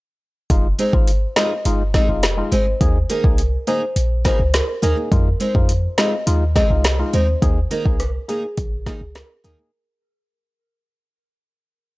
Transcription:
0.50 808-style bass F1, synth stab G#3 D#4 F4, kick, closed hi-hat
0.78 steel-string acoustic guitar G#3 C4 D#4 G#4, marimba C5, closed hi-hat
0.93 808-style bass G#1, synth stab G#3 D#4 F4, kick
1.07 closed hi-hat
1.36 steel-string acoustic guitar G#3 C4 D#4 G#4, synth stab G#3 D#4 F4, marimba D#5, snare, closed hi-hat
1.65 808-style bass G1, synth stab G#3 D#4 F4, closed hi-hat
1.94 steel-string acoustic guitar G#3 C4 D#4 G#4, marimba D#5, kick, snare, closed hi-hat
2.09 808-style bass F1, synth stab G#3 D#4 F4
2.23 snare, closed hi-hat
2.37 synth stab G#3 D#4 F4
2.52 808-style bass G#1, steel-string acoustic guitar G#3 C4 D#4 G#4, marimba C5, closed hi-hat
2.66 muted steel-string acoustic guitar stroke
2.81 808-style bass D#2, synth stab A#3 D#4 G#4, kick, closed hi-hat
3.09 steel-string acoustic guitar D#3 A#3 D#4 G#4, marimba A#4, closed hi-hat
3.24 808-style bass C2, synth stab A#3 D#4 G#4, kick
3.38 closed hi-hat
3.67 steel-string acoustic guitar D#3 A#3 D#4 G#4, synth stab A#3 D#4 G#4, marimba C5, closed hi-hat
3.96 808-style bass A#1, closed hi-hat
4.24 steel-string acoustic guitar D#3 A#3 D#4 G#4, synth stab A#3 D#4 G#4, marimba C5, kick, snare, closed hi-hat
4.39 808-style bass C#2
4.54 marimba A#4, snare, closed hi-hat
4.82 808-style bass D#2, steel-string acoustic guitar D#3 A#3 D#4 G#4, synth stab A#3 D#4 G#4, marimba A#4, closed hi-hat
4.97 muted steel-string acoustic guitar stroke
5.11 808-style bass F2, synth stab G#3 D#4 F4, kick, closed hi-hat
5.40 steel-string acoustic guitar G#3 C4 D#4 G#4, marimba C5, closed hi-hat
5.55 808-style bass F2, synth stab G#3 D#4 F4, kick
5.69 closed hi-hat
5.98 synth stab G#3 D#4 F4, steel-string acoustic guitar G#3 C4 D#4 G#4, marimba D#5, snare, closed hi-hat
6.26 808-style bass D#2, synth stab G#3 D#4 F4, closed hi-hat
6.55 steel-string acoustic guitar G#3 C4 D#4 G#4, marimba D#5, kick, snare, closed hi-hat
6.70 808-style bass C2, synth stab G#3 D#4 F4
6.84 snare, closed hi-hat
6.99 synth stab G#3 D#4 F4
7.13 808-style bass D#2, steel-string acoustic guitar G#3 C4 D#4 G#4, marimba C5, closed hi-hat
7.28 muted steel-string acoustic guitar stroke
7.42 808-style bass D#2, synth stab A#3 D#4 G#4, kick, closed hi-hat
7.71 steel-string acoustic guitar D#3 A#3 D#4 G#4, marimba A#4, closed hi-hat
7.85 808-style bass C2, synth stab A#3 D#4 G#4, kick
8.00 cross-stick, closed hi-hat
8.28 steel-string acoustic guitar D#3 A#3 D#4 G#4, synth stab A#3 D#4 G#4, marimba G#4, closed hi-hat
8.57 808-style bass A#1, kick, closed hi-hat
8.86 steel-string acoustic guitar D#3 A#3 D#4 G#4, synth stab A#3 D#4 G#4, marimba G#4, kick, snare, closed hi-hat
9.01 808-style bass C#2
9.15 marimba A#4, cross-stick, snare, closed hi-hat
9.44 808-style bass D#2, steel-string acoustic guitar D#3 A#3 D#4 G#4, synth stab A#3 D#4 G#4, marimba A#4, closed hi-hat
9.58 muted steel-string acoustic guitar stroke

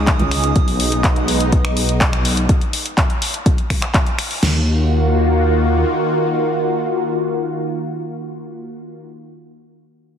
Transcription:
Already playing: detuned saw bass C#2, analog synth pad C#3 C#4 D#4 G#4, synth texture D#6
0.07 kick, clap, closed hi-hat
0.19 closed hi-hat, high conga, low conga
0.31 finger snap, open hi-hat
0.44 closed hi-hat, high woodblock
0.56 detuned saw bass B1, analog synth pad G#3 B3 D#4, kick, closed hi-hat
0.68 open hi-hat
0.80 open hi-hat
0.92 closed hi-hat
1.04 kick, clap, closed hi-hat
1.16 closed hi-hat
1.28 open hi-hat
1.40 closed hi-hat
1.52 kick, closed hi-hat
1.65 finger snap, closed hi-hat
1.77 open hi-hat
1.89 closed hi-hat
2.01 kick, clap, closed hi-hat
2.13 finger snap, closed hi-hat
2.25 open hi-hat
2.37 closed hi-hat
2.49 kick, closed hi-hat
2.61 closed hi-hat
2.73 open hi-hat
2.86 closed hi-hat
2.98 kick, clap, closed hi-hat
3.10 closed hi-hat
3.22 open hi-hat
3.34 closed hi-hat
3.46 kick, closed hi-hat
3.58 closed hi-hat
3.70 finger snap, kick, open hi-hat
3.82 finger snap, clap, closed hi-hat
3.94 kick, clap, closed hi-hat
4.07 closed hi-hat
4.19 finger snap, open hi-hat
4.31 open hi-hat
4.43 detuned saw bass D#2, analog synth pad D#3 A#3 F4 F#4, snare, crash

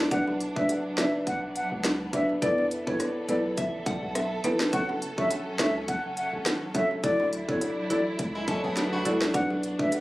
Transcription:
Already playing: string section D4
0.11 808-style bass B1, string section F#3 B3, marimba D4 F#4 B4 D5, flute F#5, kick, closed hi-hat
0.27 high bongo
0.40 closed hi-hat
0.56 808-style bass C#2, marimba D4 F#4 B4 D5, flute E5, kick, high bongo
0.69 closed hi-hat, high bongo
0.98 808-style bass F#1, marimba D4 F#4 B4 D5, flute E5, cross-stick, snare, closed hi-hat, low bongo
1.27 808-style bass B1, flute F#5, kick, closed hi-hat
1.56 flute F#5, closed hi-hat
1.72 808-style bass C#2
1.84 cross-stick, snare, closed hi-hat, high bongo
2.13 808-style bass B1, marimba D4 F#4 B4 D5, flute E5, kick, closed hi-hat, high bongo, low bongo
2.29 high bongo
2.42 808-style bass E2, string section E3 A4, marimba B3 E4 A4 B4, flute D5, kick, closed hi-hat
2.58 high bongo
2.71 closed hi-hat
2.87 808-style bass F#2, marimba B3 E4 A4 B4, flute C#5, kick, high bongo
3.00 cross-stick, closed hi-hat, high bongo
3.29 808-style bass B1, marimba B3 E4 A4 B4, flute D5, closed hi-hat, low bongo
3.57 808-style bass A1, synth bell E5, kick, closed hi-hat
3.86 synth bell F#5, kick, closed hi-hat
4.03 808-style bass B1
4.15 synth bell E5, cross-stick, closed hi-hat, high bongo
4.44 808-style bass A1, marimba B3 E4 A4 B4, closed hi-hat, high bongo, low bongo
4.60 cross-stick, snare, high bongo
4.73 808-style bass F#1, string section F#3 C#4, marimba C#4 F#4 A4 C#5, flute F#5, kick, closed hi-hat
4.89 high bongo
5.02 closed hi-hat
5.18 808-style bass A1, marimba C#4 F#4 A4 C#5, flute E5, kick, high bongo
5.30 closed hi-hat, high bongo
5.59 808-style bass C#2, marimba C#4 F#4 A4 C#5, flute E5, cross-stick, snare, closed hi-hat, low bongo
5.88 808-style bass F#1, flute F#5, kick, closed hi-hat
6.17 flute F#5, closed hi-hat
6.33 808-style bass G#1
6.46 cross-stick, snare, closed hi-hat, high bongo
6.75 808-style bass F#1, marimba C#4 F#4 A4 C#5, flute E5, kick, closed hi-hat, high bongo, low bongo
6.91 high bongo
7.04 808-style bass D2, string section D4 E4, marimba E4 F#4 A4 D5, flute D5, kick, closed hi-hat
7.20 high bongo
7.33 closed hi-hat
7.48 808-style bass E2, marimba E4 F#4 A4 D5, flute C#5, kick, high bongo
7.61 closed hi-hat, high bongo
7.90 808-style bass A1, marimba E4 F#4 A4 D5, flute D5, closed hi-hat, low bongo
8.19 808-style bass C#2, kick, closed hi-hat
8.35 steel-string acoustic guitar G#3 E4
8.48 steel-string acoustic guitar C#4 A4, kick, closed hi-hat
8.64 808-style bass D2, steel-string acoustic guitar B3 G#4
8.77 snare, closed hi-hat, high bongo
8.93 steel-string acoustic guitar A3 F#4
9.05 808-style bass C#2, marimba E4 F#4 A4 D5, closed hi-hat, high bongo, low bongo
9.21 cross-stick, snare, high bongo
9.34 808-style bass B1, string section B3, marimba D4 F#4 B4 D5, flute F#5, kick, closed hi-hat
9.50 high bongo
9.63 closed hi-hat
9.79 808-style bass C#2, marimba D4 F#4 B4 D5, flute E5, kick, high bongo
9.92 closed hi-hat, high bongo

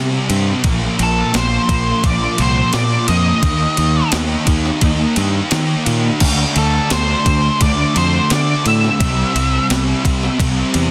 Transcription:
Already playing: fingered electric bass C3, distorted electric guitar C3 G3 C4
0.28 fingered electric bass G2, distorted electric guitar G3 C4, ride
0.64 fingered electric bass A#1, distorted electric guitar A#2 F3 A#3, kick, ride
0.98 fingered electric bass A#1, distorted electric guitar F3 A#3, ride
1.03 lead electric guitar A4
1.33 fingered electric bass A#1, distorted electric guitar A#2 F3 A#3, lead electric guitar C5, snare, ride
1.68 fingered electric bass A#1, distorted electric guitar F3 A#3, kick, ride
2.03 fingered electric bass A#1, distorted electric guitar A#2 F3 A#3, lead electric guitar D5, kick, ride
2.37 fingered electric bass C2, distorted electric guitar F3 A#3, lead electric guitar C5, ride
2.73 distorted electric guitar A#2 F3 A#3, fingered electric bass A#2, lead electric guitar D5, snare, ride
3.08 fingered electric bass F2, distorted electric guitar F3 A#3, lead electric guitar D#5, ride
3.42 fingered electric bass D#2, distorted electric guitar D#3 A#3 D#4, kick, ride
3.77 fingered electric bass D#2, distorted electric guitar A#3 D#4, ride
4.11 fingered electric bass D#2, distorted electric guitar D#3 A#3 D#4, snare, ride
4.46 fingered electric bass D#2, distorted electric guitar A#3 D#4, kick, ride
4.65 snare
4.81 fingered electric bass D#2, distorted electric guitar D#3 A#3 D#4, kick, ride
5.16 fingered electric bass G2, distorted electric guitar A#3 D#4, ride
5.51 distorted electric guitar D#3 A#3 D#4, fingered electric bass D#3, snare, ride
5.86 fingered electric bass A#2, distorted electric guitar A#3 D#4, ride
6.20 fingered electric bass D2, distorted electric guitar D3 A3 D4, kick, crash
6.56 fingered electric bass D2, distorted electric guitar A3 D4, lead electric guitar A4, ride
6.90 fingered electric bass D2, distorted electric guitar D3 A3 D4, lead electric guitar C5, snare, ride
7.25 fingered electric bass D2, distorted electric guitar A3 D4, kick, ride
7.60 fingered electric bass D2, distorted electric guitar D3 A3 D4, lead electric guitar D5, kick, ride
7.95 fingered electric bass F2, distorted electric guitar A3 D4, lead electric guitar C5, ride
8.30 distorted electric guitar D3 A3 D4, fingered electric bass D3, lead electric guitar D5, snare, ride
8.65 fingered electric bass A2, distorted electric guitar A3 D4, lead electric guitar E5, ride
8.84 snare
9.00 fingered electric bass C2, distorted electric guitar C3 G3 C4, kick, ride
9.34 fingered electric bass C2, distorted electric guitar G3 C4, ride
9.69 fingered electric bass C2, distorted electric guitar C3 G3 C4, snare, ride
10.04 fingered electric bass C2, distorted electric guitar G3 C4, kick, ride
10.23 snare
10.39 fingered electric bass C2, distorted electric guitar C3 G3 C4, kick, ride
10.73 fingered electric bass E2, distorted electric guitar G3 C4, ride

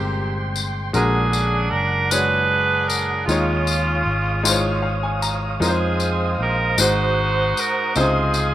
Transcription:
Already playing: fingered electric bass G1, grand piano A#2 G#3 C4 G4 A#4 C5, saxophone section A#3 C4 G4, tonewheel organ G5 C6
0.56 tambourine
0.93 fingered electric bass A#1, grand piano A#2 D3 G#3 F#4 A#4, saxophone section C#4 G#4, tonewheel organ F#5, tambourine
0.97 saxophone section D4
1.33 tambourine
1.71 fingered electric bass F#1, saxophone section A#4
2.11 grand piano G#3 D4 F#4 C#5, saxophone section G#4 B4, tambourine
2.15 saxophone section D4
2.88 saxophone section A#4, tambourine
3.26 fingered electric bass D#2, grand piano D#3 G#3 D#4 F4, saxophone section G#3 C#4 F4, tonewheel organ C#5 F5 D#6, tambourine
3.30 grand piano C#5
3.67 tambourine
4.05 fingered electric bass G#1
4.43 grand piano G#3 D#4 F4 C5, tambourine
4.51 grand piano C#5
4.82 grand piano F5
5.03 grand piano G#5
5.22 grand piano A#5, tambourine
5.60 fingered electric bass F2, grand piano G#3 D#4 F4 A#4, saxophone section C4 D#4 G#4, tonewheel organ C5 D#6, tambourine
5.68 grand piano C5
6.00 tambourine
6.39 fingered electric bass A#1, saxophone section A#4
6.78 fingered electric bass G#1, grand piano G#2 G#3 D#4 F#4 C5, saxophone section D#4 F#4 C5, tonewheel organ F#5, tambourine
7.57 saxophone section A#4, tambourine
7.95 fingered electric bass C#2, grand piano C3 C#3 D#4 F4 C5, saxophone section C4 F4 G#4, tonewheel organ D#5 F5 C6, tambourine
8.34 tambourine

